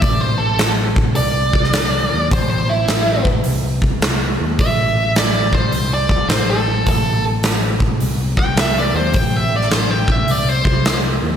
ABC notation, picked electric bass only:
X:1
M:4/4
L:1/8
Q:"Swing" 1/4=105
K:Am
V:1 name="Picked electric bass" clef=bass
A,,,4 C,,3 ^D,, | A,,,4 C,,3 ^D,, | A,,,4 C,,2 A,,,2 | A,,,4 C,,3 ^D,, |
A,,,4 C,,3 ^D,, |]